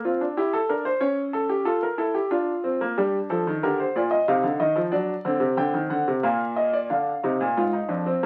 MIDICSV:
0, 0, Header, 1, 2, 480
1, 0, Start_track
1, 0, Key_signature, -2, "minor"
1, 0, Tempo, 652174
1, 745, Time_signature, 3, 2, 24, 8
1, 4104, Tempo, 665927
1, 6038, End_track
2, 0, Start_track
2, 0, Title_t, "Grand piano"
2, 0, Program_c, 0, 0
2, 35, Note_on_c, 0, 60, 49
2, 36, Note_on_c, 0, 65, 62
2, 147, Note_off_c, 0, 60, 0
2, 156, Note_on_c, 0, 62, 56
2, 182, Note_off_c, 0, 65, 0
2, 267, Note_off_c, 0, 62, 0
2, 273, Note_on_c, 0, 64, 66
2, 275, Note_on_c, 0, 67, 72
2, 387, Note_off_c, 0, 67, 0
2, 393, Note_on_c, 0, 69, 74
2, 419, Note_off_c, 0, 64, 0
2, 505, Note_off_c, 0, 69, 0
2, 510, Note_on_c, 0, 62, 58
2, 512, Note_on_c, 0, 70, 63
2, 625, Note_off_c, 0, 70, 0
2, 627, Note_on_c, 0, 72, 72
2, 657, Note_off_c, 0, 62, 0
2, 740, Note_on_c, 0, 73, 75
2, 741, Note_on_c, 0, 61, 63
2, 742, Note_off_c, 0, 72, 0
2, 890, Note_off_c, 0, 73, 0
2, 981, Note_on_c, 0, 69, 65
2, 1098, Note_off_c, 0, 69, 0
2, 1100, Note_on_c, 0, 67, 68
2, 1206, Note_off_c, 0, 61, 0
2, 1216, Note_on_c, 0, 65, 60
2, 1217, Note_off_c, 0, 67, 0
2, 1217, Note_on_c, 0, 69, 70
2, 1335, Note_off_c, 0, 69, 0
2, 1345, Note_on_c, 0, 70, 64
2, 1366, Note_off_c, 0, 65, 0
2, 1456, Note_on_c, 0, 64, 56
2, 1458, Note_on_c, 0, 69, 64
2, 1459, Note_off_c, 0, 70, 0
2, 1575, Note_off_c, 0, 69, 0
2, 1579, Note_on_c, 0, 67, 66
2, 1606, Note_off_c, 0, 64, 0
2, 1696, Note_off_c, 0, 67, 0
2, 1699, Note_on_c, 0, 62, 67
2, 1699, Note_on_c, 0, 65, 71
2, 1848, Note_off_c, 0, 62, 0
2, 1942, Note_on_c, 0, 60, 57
2, 2057, Note_off_c, 0, 60, 0
2, 2068, Note_on_c, 0, 58, 58
2, 2165, Note_off_c, 0, 65, 0
2, 2181, Note_off_c, 0, 58, 0
2, 2191, Note_on_c, 0, 55, 75
2, 2191, Note_on_c, 0, 62, 61
2, 2193, Note_on_c, 0, 67, 57
2, 2336, Note_off_c, 0, 55, 0
2, 2338, Note_off_c, 0, 67, 0
2, 2428, Note_on_c, 0, 53, 71
2, 2430, Note_on_c, 0, 69, 59
2, 2541, Note_off_c, 0, 53, 0
2, 2555, Note_on_c, 0, 51, 72
2, 2576, Note_off_c, 0, 69, 0
2, 2651, Note_off_c, 0, 62, 0
2, 2664, Note_off_c, 0, 51, 0
2, 2673, Note_on_c, 0, 70, 63
2, 2674, Note_on_c, 0, 50, 72
2, 2675, Note_on_c, 0, 67, 63
2, 2783, Note_off_c, 0, 70, 0
2, 2794, Note_on_c, 0, 72, 57
2, 2819, Note_off_c, 0, 50, 0
2, 2820, Note_off_c, 0, 67, 0
2, 2904, Note_off_c, 0, 72, 0
2, 2911, Note_on_c, 0, 46, 67
2, 2914, Note_on_c, 0, 65, 53
2, 2915, Note_on_c, 0, 74, 55
2, 3023, Note_on_c, 0, 75, 61
2, 3025, Note_off_c, 0, 74, 0
2, 3057, Note_off_c, 0, 46, 0
2, 3059, Note_off_c, 0, 65, 0
2, 3139, Note_off_c, 0, 75, 0
2, 3149, Note_on_c, 0, 48, 76
2, 3150, Note_on_c, 0, 77, 67
2, 3151, Note_on_c, 0, 63, 61
2, 3262, Note_off_c, 0, 48, 0
2, 3262, Note_on_c, 0, 50, 72
2, 3296, Note_off_c, 0, 77, 0
2, 3379, Note_off_c, 0, 50, 0
2, 3384, Note_on_c, 0, 75, 61
2, 3385, Note_on_c, 0, 51, 68
2, 3501, Note_off_c, 0, 51, 0
2, 3501, Note_on_c, 0, 53, 74
2, 3533, Note_off_c, 0, 75, 0
2, 3614, Note_off_c, 0, 63, 0
2, 3619, Note_off_c, 0, 53, 0
2, 3619, Note_on_c, 0, 62, 62
2, 3619, Note_on_c, 0, 74, 61
2, 3621, Note_on_c, 0, 54, 75
2, 3770, Note_off_c, 0, 62, 0
2, 3771, Note_off_c, 0, 54, 0
2, 3863, Note_on_c, 0, 50, 70
2, 3865, Note_on_c, 0, 60, 64
2, 3973, Note_on_c, 0, 48, 66
2, 3980, Note_off_c, 0, 50, 0
2, 4088, Note_off_c, 0, 74, 0
2, 4096, Note_off_c, 0, 48, 0
2, 4100, Note_on_c, 0, 50, 74
2, 4104, Note_on_c, 0, 79, 65
2, 4217, Note_off_c, 0, 50, 0
2, 4221, Note_on_c, 0, 51, 67
2, 4251, Note_off_c, 0, 79, 0
2, 4336, Note_on_c, 0, 50, 65
2, 4337, Note_off_c, 0, 51, 0
2, 4339, Note_on_c, 0, 78, 56
2, 4455, Note_off_c, 0, 50, 0
2, 4465, Note_on_c, 0, 48, 67
2, 4488, Note_off_c, 0, 78, 0
2, 4559, Note_off_c, 0, 60, 0
2, 4577, Note_on_c, 0, 46, 75
2, 4577, Note_on_c, 0, 58, 62
2, 4579, Note_off_c, 0, 48, 0
2, 4579, Note_on_c, 0, 77, 61
2, 4728, Note_off_c, 0, 77, 0
2, 4816, Note_on_c, 0, 75, 58
2, 4934, Note_off_c, 0, 75, 0
2, 4939, Note_on_c, 0, 74, 62
2, 5044, Note_off_c, 0, 46, 0
2, 5045, Note_off_c, 0, 58, 0
2, 5056, Note_off_c, 0, 74, 0
2, 5058, Note_on_c, 0, 77, 54
2, 5059, Note_on_c, 0, 62, 56
2, 5062, Note_on_c, 0, 50, 60
2, 5209, Note_off_c, 0, 62, 0
2, 5212, Note_off_c, 0, 50, 0
2, 5300, Note_on_c, 0, 63, 57
2, 5301, Note_on_c, 0, 48, 65
2, 5419, Note_off_c, 0, 48, 0
2, 5423, Note_on_c, 0, 46, 67
2, 5451, Note_off_c, 0, 63, 0
2, 5541, Note_off_c, 0, 46, 0
2, 5543, Note_on_c, 0, 65, 64
2, 5544, Note_on_c, 0, 44, 70
2, 5656, Note_on_c, 0, 63, 55
2, 5661, Note_off_c, 0, 65, 0
2, 5693, Note_off_c, 0, 44, 0
2, 5769, Note_on_c, 0, 41, 61
2, 5769, Note_on_c, 0, 62, 57
2, 5777, Note_off_c, 0, 63, 0
2, 5893, Note_off_c, 0, 62, 0
2, 5896, Note_on_c, 0, 60, 62
2, 5922, Note_off_c, 0, 41, 0
2, 6016, Note_off_c, 0, 60, 0
2, 6038, Note_off_c, 0, 77, 0
2, 6038, End_track
0, 0, End_of_file